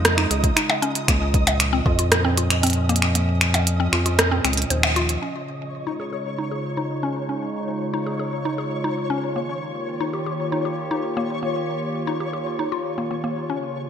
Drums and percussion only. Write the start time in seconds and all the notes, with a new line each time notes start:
0.05 cross-stick, closed hi-hat
0.18 finger snap
0.31 closed hi-hat
0.44 kick, closed hi-hat
0.57 finger snap, closed hi-hat
0.70 percussion blips
0.83 closed hi-hat
0.95 closed hi-hat
1.08 finger snap, kick, closed hi-hat
1.34 kick, closed hi-hat
1.47 closed hi-hat, percussion blips
1.60 finger snap, closed hi-hat
1.86 kick
1.99 closed hi-hat
2.12 cross-stick, closed hi-hat
2.38 closed hi-hat
2.50 finger snap, closed hi-hat
2.63 closed hi-hat
2.67 closed hi-hat
2.70 closed hi-hat
2.73 closed hi-hat
2.89 closed hi-hat
2.96 closed hi-hat
3.02 finger snap
3.15 closed hi-hat
3.41 finger snap, closed hi-hat
3.54 closed hi-hat, percussion blips
3.67 closed hi-hat
3.93 finger snap
4.06 closed hi-hat
4.19 cross-stick, closed hi-hat
4.45 finger snap, closed hi-hat
4.53 closed hi-hat
4.57 closed hi-hat
4.62 closed hi-hat
4.70 closed hi-hat
4.83 finger snap, percussion blips
4.96 closed hi-hat
5.09 closed hi-hat